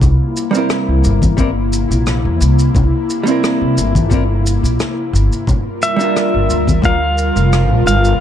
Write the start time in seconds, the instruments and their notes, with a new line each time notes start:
Already playing: analog synth pad C3 A#3 E4
0.02 upright bass C2, kick, low conga, shaker
0.37 shaker
0.51 hollow-body jazz guitar G3 A#3 C4, shaker
0.57 hollow-body jazz guitar E4 A#4
0.70 cross-stick, shaker
0.88 upright bass C2
1.04 upright bass G1, shaker
1.22 kick, high conga, shaker
1.37 hollow-body jazz guitar G3 A#3 C4 E4 A#4, kick, shaker
1.73 shaker
1.91 upright bass A#1, shaker
2.06 cross-stick, shaker
2.25 upright bass E2
2.41 upright bass C2, shaker
2.59 shaker
2.75 upright bass C2, kick, low conga, shaker
3.10 shaker
3.23 hollow-body jazz guitar G3 A#3 C4, shaker
3.29 hollow-body jazz guitar E4 A#4
3.44 cross-stick, shaker
3.62 upright bass C2
3.78 upright bass G1, shaker
3.95 kick, high conga, shaker
4.10 hollow-body jazz guitar G3 A#3 C4 E4, kick, shaker
4.14 hollow-body jazz guitar A#4
4.47 shaker
4.63 upright bass A#1, shaker
4.80 cross-stick, shaker
5.13 upright bass G1, shaker
5.33 shaker
5.47 upright bass G1, analog synth pad G3 F4 A#4, kick, low conga, shaker
5.82 pedal steel guitar E5, shaker
5.96 hollow-body jazz guitar G3 A#3 D4, shaker
6.02 hollow-body jazz guitar F4 A#4
6.17 cross-stick, shaker
6.34 upright bass G1
6.50 upright bass D2, shaker
6.67 kick, high conga, shaker
6.82 hollow-body jazz guitar G3 A#3 D4 F4 A#4, pedal steel guitar F5, kick, shaker
7.18 shaker
7.36 upright bass F1, shaker
7.53 cross-stick, shaker
7.70 upright bass A#1
7.86 upright bass G1, pedal steel guitar F5, shaker
8.05 shaker